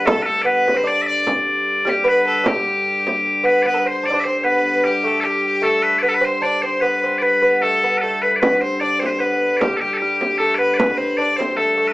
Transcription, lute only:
\new Staff \with { instrumentName = "Lute" } { \time 3/4 \key g \major \tempo 4 = 151 a8 a8 b8. c'16 d'4 | r4. g8 b4 | g2 r8 b8 | b8 c'8 d'32 d'32 d'16 c'8 b4 |
g8 a8 g4 a4 | b8 c'8 d'8 c'8 b8 c'8 | b8 b8 a8 b8 a4 | b8 c'8 d'8 c'8 b4 |
g8 g8 g4 a8 b8 | b8 c'8 d'8 c'8 a8 a8 | }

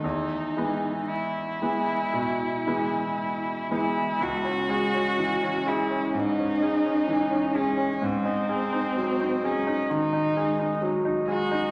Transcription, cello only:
\new Staff \with { instrumentName = "Cello" } { \time 4/4 \key e \major \tempo 4 = 63 dis'4 e'2~ e'8 e'8 | \key cis \minor fis'4. e'8 dis'4. cis'8 | bis4. cis'8 dis'4 r8 fis'8 | }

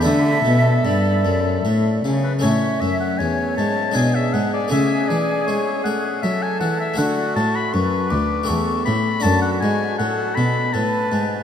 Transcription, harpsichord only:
<<
  \new Staff \with { instrumentName = "Harpsichord" } { \time 3/4 \key d \major \tempo 4 = 79 <a d' fis'>2. | \key a \major <a cis' e'>2 <gis d' e'>4 | <a cis' e'>2. | <a fis' a'>2 <a g' a'>4 |
<d' fis' a'>2. | }
  \new Staff \with { instrumentName = "Harpsichord" } { \clef bass \time 3/4 \key d \major d8 b,8 g,8 fis,8 a,8 cis8 | \key a \major a,8 fis,8 e,8 gis,8 b,8 gis,8 | cis8 e8 gis8 a8 fis8 e8 | d8 a,8 fis,8 d,8 e,8 a,8 |
fis,8 gis,8 a,8 b,8 a,8 gis,8 | }
>>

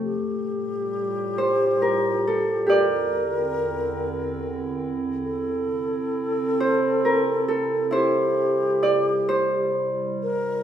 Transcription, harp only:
\new Staff \with { instrumentName = "Harp" } { \time 6/8 \key c \mixolydian \tempo 4. = 45 << { r4. c''8 bes'8 a'8 | d''2 r4 | r4. c''8 bes'8 a'8 | c''4 d''8 c''4 r8 | } \\ { r2. | g'2 r4 | r2. | e'4. r4. | } >> }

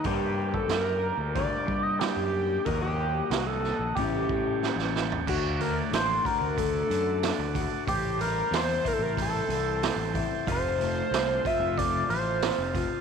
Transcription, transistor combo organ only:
\new Staff \with { instrumentName = "Transistor combo organ" } { \time 4/4 \key g \minor \tempo 4 = 92 << { d''1 | ees''2 <cis'' a''>2 | \key d \minor <d'' a''>1 | <c'' a''>1~ |
<c'' a''>1 | } \\ { g''1 | ges''2 g''2 | fis''1 | g''1 |
f'1 | } >> }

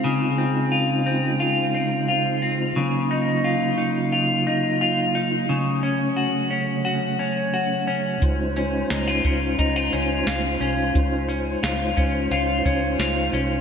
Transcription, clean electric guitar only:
\new Staff \with { instrumentName = "Clean electric guitar" } { \time 4/4 \key des \major \tempo 4 = 88 <des c' f'>8 c'8 f'8 c'8 f'8 c'8 f'8 c'8 | des8 ees'8 f'8 ees'8 f'8 ees'8 f'8 ees'8 | des8 des'8 ges'8 des'8 ges'8 des'8 ges'8 des'8 | r8 des'8 ees'16 f'16 des'8 ees'16 f'16 des'8 f'8 des'8~ |
des'8 des'8 f'8 des'8 f'8 des'8 f'8 des'8 | }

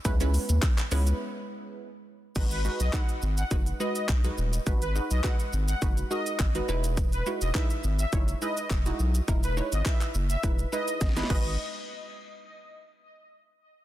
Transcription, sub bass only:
\new Staff \with { instrumentName = "Sub bass" } { \clef bass \time 4/4 \key gis \minor \tempo 4 = 104 cis,8. dis,16 r8 cis,8 r2 | gis,,8. b,,16 r8 gis,,8 fis,,8 r8 b,,8 dis,,8 | gis,,8. b,,16 r8 gis,,8 fis,,8 r8 gis,,8 e,,8~ | e,,8. e,,16 r8 gis,,8 fis,,8 r8 e,,8 b,,8 |
e,,8. gis,,16 r8 fis,,8 e,,8 r8 gis,,8 gis,,8 | r1 | }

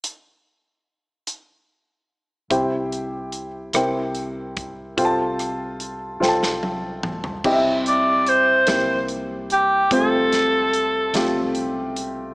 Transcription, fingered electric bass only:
\new Staff \with { instrumentName = "Fingered electric bass" } { \clef bass \time 6/8 \key c \major \tempo 4. = 49 r2. | c,4. c,4. | c,4. c,4. | c,4. c,4. |
c,4. c,4. | }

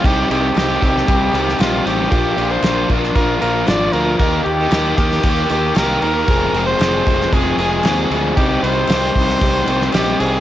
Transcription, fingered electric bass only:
\new Staff \with { instrumentName = "Fingered electric bass" } { \clef bass \time 4/4 \key c \minor \tempo 4 = 115 c,8 c,8 c,8 c,8 c,8 c,8 bes,,8 a,,8 | bes,,8 bes,,8 bes,,8 bes,,8 bes,,8 bes,,8 aes,,8 d,8 | ees,8 ees,8 ees,8 ees,8 ees,8 ees,8 c,8 ees,8 | f,,8 f,,8 f,,8 f,,8 f,,8 f,,8 ees,8 d,8 |
c,8 c,8 c,8 c,8 c,8 c,8 bes,,8 c,8 | }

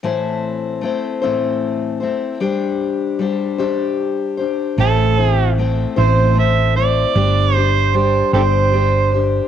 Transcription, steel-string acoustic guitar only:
\new Staff \with { instrumentName = "Steel-string acoustic guitar" } { \time 6/8 \key a \minor \tempo 4. = 51 <a, e a c' e' c''>4 <a c' e' c''>8 <a, e a c' e' c''>4 <a c' e' c''>8 | <g d' g' c''>4 <g d' g' c''>8 <g d' g' c''>4 <d' g' c''>8 | <a, e a c' e' c''>8 <a c' e' c''>8 <a c' e' c''>8 <a, e a c' e' c''>8 <a c' e' c''>8 <a c' e' c''>8 | <g d' g' c''>8 <d' g' c''>8 <g d' g' c''>8 <g d' g' c''>8 <g d' g' c''>8 <d' g' c''>8 | }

